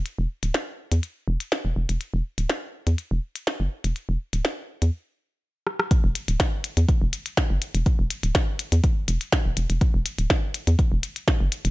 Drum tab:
HH |x--xx--xx--xx--x|x--xx--xx--xx--x|x--xx--x--------|x-xxx-xxx-xxx-xx|
SD |----o-------o---|----o-------o---|----o---------rr|----o-------o---|
BD |----------------|----------------|----------------|o---o---o---o---|

HH |x-xxx-xxx-xxx-xx|x-xxx-xxx-xxx-xx|
SD |----o-------o---|----o-------o---|
BD |o---o---o---o---|o---o---o---o---|